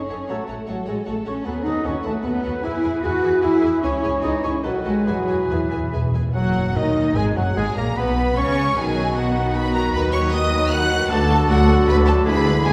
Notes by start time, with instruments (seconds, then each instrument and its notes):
Already playing: french horn section C#4, cello section C#4, violin section G#4, flute C#6
0.09 double bass section F#1, viola section A4, violin section C#5 F#5
0.27 double bass section A1, bassoon F#3, cello section A3, french horn section A3, violin section F#4 C#5 F#5, viola section F#4 A4, clarinet A4, oboe C#5, flute A5
0.47 double bass section A1, viola section F#4 A4, violin section C#5 F#5
0.66 double bass section A1, cello section F#3, french horn section F#3, viola section F#4 A4, violin section A4 C#5 F#5, flute F#5
0.85 double bass section A1, cello section G#3, french horn section G#3, viola section F#4 A4, violin section C#5 F#5, flute G#5
1.05 double bass section A1, cello section A3, french horn section A3, viola section F#4 A4, violin section C#5 F#5, flute A5
1.25 double bass section A1, french horn section C#4, cello section C#4, viola section F#4 A4, violin section C#5 F#5, flute C#6
1.45 double bass section D#2, bassoon F#3, french horn section B3, cello section B3, viola section F#4 A4, violin section G#4 B4 F#5, clarinet A4, oboe B4, flute B5
1.64 double bass section D#2, french horn section D#4, cello section D#4, viola section F#4 A4, violin section B4 F#5, flute D#6
1.84 double bass section D#2, french horn section C#4, cello section C#4, violin section F#4 B4 F#5, viola section F#4 A4, flute C#6
2.02 double bass section D#2, cello section A3, french horn section A3, viola section F#4 A4, violin section B4 F#5, flute A5
2.23 double bass section D#2, french horn section B3, cello section B3, viola section F#4 A4, violin section B4 F#5, flute B5
2.43 double bass section D#2, viola section F#4 A4, violin section B4 F#5
2.63 double bass section E2, bassoon E3, cello section E4, viola section E4 G#4, french horn section E4, violin section G#4 B4 G#5, clarinet G#4, flute E6
2.83 double bass section E2, viola section E4 G#4, violin section B4 G#5
3.01 double bass section E2, viola section E4 G#4, cello section F#4, french horn section F#4, violin section B4 G#5, flute F#6
3.23 double bass section E2, viola section E4 G#4, violin section B4 G#5
3.42 double bass section E2, cello section E4, viola section E4 G#4, french horn section E4, violin section G#4 B4 G#5, flute E6
3.61 double bass section E2, viola section E4 G#4, violin section B4 G#5
3.82 double bass section C#2, french horn section C#4, cello section C#4, violin section E4 C#5 G#5, viola section E4 G#4, oboe C#5, flute C#6
4.02 double bass section C#2, viola section E4 G#4, violin section C#5 G#5
4.22 double bass section C#2, cello section D#4, french horn section D#4, viola section E4 G#4, violin section C#5 G#5, flute D#6
4.43 double bass section C#2, cello section C#4, french horn section C#4, viola section E4 G#4, violin section C#5 G#5, flute C#6
4.63 double bass section B1, bassoon D#3, cello section F#3, french horn section F#3, violin section F#4 D#5 A5, viola section F#4 B4, clarinet A4, oboe B4, flute F#5
4.85 double bass section B1, cello section G#3, french horn section G#3, viola section F#4 B4, violin section D#5 A5, flute G#5
5.05 timpani E2, double bass section E2, bassoon E3, cello section F#3, violin section G#4 E5 G#5, viola section G#4 B4, clarinet G#4, flute F#5
5.09 french horn section F#3
5.15 timpani E2
5.24 timpani E2, violin section E5
5.28 double bass section E2, timpani E2, viola section G#4 B4, violin section G#5
5.39 timpani E2
5.48 timpani E2, double bass section E2, cello section E3, viola section G#4 B4, violin section E5 G#5, flute E5
5.52 timpani E2, french horn section E3
5.64 timpani E2
5.71 double bass section E2, timpani E2, viola section G#4 B4, violin section E5 G#5
5.80 timpani E2
5.89 timpani E2, viola section B4
5.93 double bass section E2, timpani E2, viola section G#4, violin section E5 G#5
6.03 timpani E2
6.12 timpani E2, double bass section E2, viola section G#4 B4, violin section E5 G#5
6.19 timpani E2
6.28 timpani E2
6.34 double bass section F#1, cello section F#2, viola section F#3, bassoon F#3, french horn section F#3, violin section F#4 F#5, clarinet F#4, oboe F#5, flute F#5
6.75 cello section D#2, double bass section D#2, bassoon D#3, viola section D#3, french horn section D#3, violin section D#4 D#5, clarinet D#4, flute D#5, oboe D#5
7.15 double bass section G#1, cello section G#2, french horn section G#3, viola section G#3, bassoon G#3, violin section G#4 G#5, clarinet G#4, flute G#5, oboe G#5
7.36 double bass section F#1, cello section F#2, viola section F#3, french horn section F#3, bassoon F#3, violin section F#4 F#5, clarinet F#4, flute F#5, oboe F#5
7.56 double bass section G#1, cello section G#2, viola section G#3, french horn section G#3, bassoon G#3, violin section G#4 G#5, clarinet G#4, flute G#5, oboe G#5
7.76 double bass section A#1, cello section A#2, french horn section A#3, viola section A#3, bassoon A#3, violin section A#4 A#5, clarinet A#4, flute A#5, oboe A#5
7.96 double bass section B1, cello section B2, french horn section B3, bassoon B3, viola section B3, clarinet B4, violin section B4 B5, flute B5, oboe B5
8.37 double bass section C#2, cello section C#3, french horn section C#4, viola section C#4, bassoon C#4, clarinet C#5, violin section C#5 C#6, flute C#6, oboe C#6
8.77 double bass section B1, cello section B2, bassoon D#3, viola section D#3 F#4, french horn section F#3 D#4, clarinet F#4, violin section G#4 G#5, oboe B4, flute G#5
8.97 viola section F#3
9.15 viola section B3, violin section F#4 F#5, flute F#5
9.35 viola section D#4
9.54 viola section B3, violin section B4 B5, flute B5
9.74 viola section F#3, violin section A#4 A#5, flute A#5
9.93 cello section D#2, double bass section D#2, viola section D#3, violin section B4 B5, french horn section B4, flute B5
10.12 viola section F#3, violin section C#5 C#6, flute C#6
10.31 viola section B3, violin section D#5 D#6, flute D#6
10.51 viola section F#3
10.71 viola section D#3, violin section F#5 F#6, flute F#6
10.91 viola section F#3
11.09 cello section D2, double bass section D2, bassoon D3, french horn section F#3 A4, viola section A3 F#4, clarinet F#4, oboe A4, violin section A4 A5, flute A5
11.30 viola section A3 F#4
11.48 cello section D2, double bass section D2, french horn section F#3 A4, viola section A3 F#4, violin section F#4 F#5, flute F#5
11.67 viola section A3 F#4
11.87 cello section D2, double bass section D2, viola section A3 F#4, violin section B4 B5, flute B5
12.06 viola section A3 F#4, violin section A4 A5, flute A5
12.25 cello section D2, double bass section D2, french horn section E3 G#4, viola section G#3 E4, clarinet E4, oboe G#4, violin section B4 B5, flute B5
12.45 viola section G#3 E4
12.64 cello section D2, double bass section D2, french horn section E3 G#4, viola section G#3 E4, violin section G#4 G#5, flute G#5